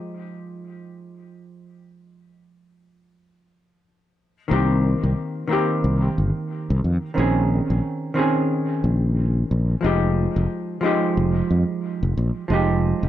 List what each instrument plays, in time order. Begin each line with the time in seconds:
Already playing: hollow-body jazz guitar F3 G#3 D#4 G4
4.48 fretless electric bass C2, hollow-body jazz guitar D#3 A#3 C4
4.53 hollow-body jazz guitar G4
5.03 fretless electric bass C2
5.47 hollow-body jazz guitar D#3 A#3 C4
5.53 hollow-body jazz guitar G4
5.84 fretless electric bass C2
6.18 fretless electric bass G1
6.70 fretless electric bass C2
6.84 fretless electric bass F2
7.14 fretless electric bass A#1, hollow-body jazz guitar D#3 C4 C#4
7.19 hollow-body jazz guitar G#4
7.70 fretless electric bass A#1
8.14 hollow-body jazz guitar D#3 C4 C#4
8.19 hollow-body jazz guitar G#4
8.84 fretless electric bass A#1
9.51 fretless electric bass A#1
9.81 fretless electric bass F1, hollow-body jazz guitar F3 G#3 D#4
9.86 hollow-body jazz guitar G4
10.36 fretless electric bass F1
10.81 hollow-body jazz guitar F3 G#3 D#4
10.86 hollow-body jazz guitar G4
11.17 fretless electric bass F1
11.51 fretless electric bass F2
12.03 fretless electric bass F1
12.17 fretless electric bass A#1
12.48 fretless electric bass F1, hollow-body jazz guitar F3 G#3 D#4
12.53 hollow-body jazz guitar G4
13.03 fretless electric bass F1